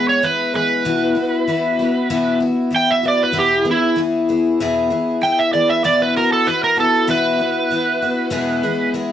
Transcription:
Already playing: E3 G#3 B3 G#4
0.09 C#5
0.22 E3 G#3 B3 G#4 B4
0.54 E3 G#3 B3 G#4 B4
0.85 B2 E3 B3 E4 F#4
1.15 B3 E4 F#4
1.48 E3 B3 E4 F#4
1.79 B3 E4 F#4
2.10 B2 E3 B3 E4 F#4
2.40 B3 E4 F#4
2.70 E3 B3 E4 F#4
2.76 G5
2.91 E5
3.03 B3 E4 F#4
3.08 D5
3.23 B4
3.32 E2 B2 E3 B3 E4
3.39 G4
3.65 E3 B3 E4 G#4
3.71 E4
3.96 E3 B3 E4 G#4
4.29 E3 B3 E4 G#4
4.60 E2 B2 E3 B3 E4 G#4
4.90 E3 B3 E4 G#4
5.21 E3 B3 E4 G#4 G5
5.39 E5
5.53 E3 B3 E4 G#4 D5
5.70 E5
5.84 B2 E3 B3 E4 F#4 D5
6.02 B4
6.16 B3 E4 F#4 A#4
6.33 A4
6.47 E3 B3 E4 F#4 B4
6.64 A#4
6.77 B3 E4 F#4 A4
7.07 B2 E3 B3 E4 F#4 B4
7.38 B3 E4 F#4
7.70 E3 B3 E4 F#4
8.02 B3 E4 F#4
8.30 E2 B2 E3 G#3 B3 G#4
8.63 E3 G#3 B3 G#4
8.94 E3 G#3 B3 G#4

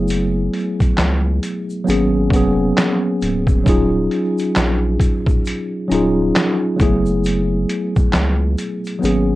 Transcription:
Already playing: F#1 F#3 A3 B3 E4 G#4
0.08 closed hi-hat, shaker
0.54 closed hi-hat, shaker
0.81 kick, closed hi-hat, shaker
0.98 C#2, snare, clap, closed hi-hat, shaker
1.43 closed hi-hat, shaker
1.70 shaker
1.84 F#3 A#3 B3, shaker
1.88 G#1 C#4 G#4, closed hi-hat
2.30 F1 F#3 A#3 B3, kick, closed hi-hat, shaker
2.34 C#4 G#4
2.78 snare, clap, closed hi-hat, shaker
3.22 D1, closed hi-hat, shaker
3.47 kick, shaker
3.64 D#1 F#3 C#4 D#4, kick, shaker
3.68 F4 G#4, closed hi-hat
4.11 closed hi-hat, shaker
4.38 closed hi-hat, shaker
4.56 A#1, snare, clap, closed hi-hat, shaker
5.00 kick, closed hi-hat, shaker
5.27 kick, shaker
5.45 closed hi-hat, shaker
5.88 D#1 F#3 C#4 D#4, closed hi-hat, shaker
5.92 F4 G#4
6.35 snare, clap, closed hi-hat, shaker
6.76 F#3 A3 B3, kick, shaker
6.80 F#1 E4 G#4, closed hi-hat
7.06 shaker
7.24 closed hi-hat, shaker
7.69 closed hi-hat, shaker
7.96 kick, shaker
8.13 C#2, snare, clap, closed hi-hat, shaker
8.58 closed hi-hat, shaker
8.85 closed hi-hat, shaker
8.99 F#3 A#3 B3, shaker
9.04 G#1 C#4 G#4, closed hi-hat

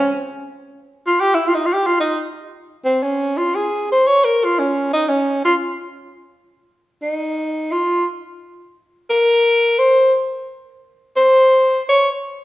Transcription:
Already playing: C#4
1.07 F4
1.21 G4
1.35 E4
1.47 F4
1.55 D#4
1.66 F4
1.74 G4
1.87 F4
2.00 D#4
2.85 C4
3.03 C#4
3.37 F4
3.55 G#4
3.92 C5
4.07 C#5
4.25 A#4
4.44 F4
4.59 C#4
4.93 D#4
5.09 C#4
5.45 F4
7.02 D#4
7.72 F4
9.10 A#4
9.79 C5
11.16 C5
11.89 C#5

